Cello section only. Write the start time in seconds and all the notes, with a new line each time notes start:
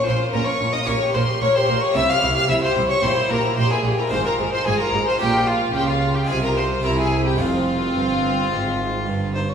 0.07 A#2
0.34 A#2
0.60 A#2
0.87 A#2
1.14 A#2
1.42 A#2
1.69 A#2
1.95 C3
2.22 C3
2.49 C3
2.76 C3
3.03 A#2
3.30 A#2
3.58 A#2
3.83 A#2
4.12 G#2
4.39 G#2
4.66 G#2
4.93 G#2
5.20 A#2
5.74 C#3
6.29 C3
6.84 C3
7.39 F2
7.95 G2
8.51 G#2
9.07 G2